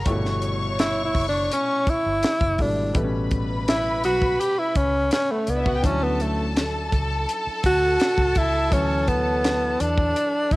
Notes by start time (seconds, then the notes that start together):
0.06 G1 A#2 G3 A3 E4 C#5 C#6, kick, closed hi-hat
0.12 B2
0.25 snare
0.42 closed hi-hat
0.79 E4, snare, closed hi-hat
1.05 E4
1.15 F#1, kick, open hi-hat
1.29 D4
1.51 C#4, closed hi-hat
1.87 E4, muted fingered electric bass stroke, kick, closed hi-hat
2.06 G1
2.23 snare, closed hi-hat
2.41 F#1, kick
2.58 G#1 B2 G3 A3 D4 E4, kick, open hi-hat
2.93 A1 B2 G3 A3 B3 B4 B5, kick, closed hi-hat
3.04 C#4
3.31 kick, closed hi-hat
3.68 E4, snare, closed hi-hat
4.04 B1 F#4, closed hi-hat
4.22 kick
4.40 G4, closed hi-hat
4.59 E4
4.75 C#2 C#4, kick, closed hi-hat
5.11 C#4, snare, closed hi-hat
5.30 A3 B3 B4
5.38 C#4 C#5
5.47 C#2 B3 D4 D5, closed hi-hat
5.57 E4 E5
5.66 F#4 F#5, kick
5.75 G4 G5
5.83 D2 F3 C#4 D4 E4 A4 A5, kick, closed hi-hat
5.90 F#3
6.04 B3
6.20 A3, closed hi-hat
6.57 snare, closed hi-hat
6.92 C#2, kick, closed hi-hat
7.29 closed hi-hat
7.47 muted fingered electric bass stroke
7.64 D2 F#4, kick, closed hi-hat
8.00 snare, closed hi-hat
8.18 C#2, kick
8.35 C#2 E4, kick, closed hi-hat
8.70 D2 E3 F#3 C#4 E4 C#5, kick, closed hi-hat
9.08 B3, kick, closed hi-hat
9.44 snare, closed hi-hat
9.80 E2 D4, closed hi-hat
9.98 kick
10.16 closed hi-hat
10.51 F#2 E4, kick, closed hi-hat